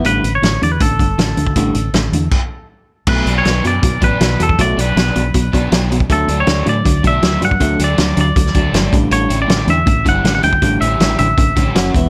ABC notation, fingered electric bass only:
X:1
M:4/4
L:1/8
Q:1/4=159
K:Amix
V:1 name="Fingered electric bass" clef=bass
A,,, A,,, A,,, E,, A,,, G,,, A,,, D,, | A,,, A,,, A,,, E,, z4 | B,,, B,,, B,,, F,, B,,, A,,, B,,, E,, | B,,, B,,, B,,, B,,, B,,, B,,, B,,,2 |
D,, D,, D,, A,, D,, B,,, D,, G,, | D,, D,, D,, D,, D,, D,, G,,, A,,, | A,,, A,,, A,,, E,, A,,, G,,, A,,, D,, | A,,, A,,, A,,, A,,, A,,, A,,, F,,, E,,, |]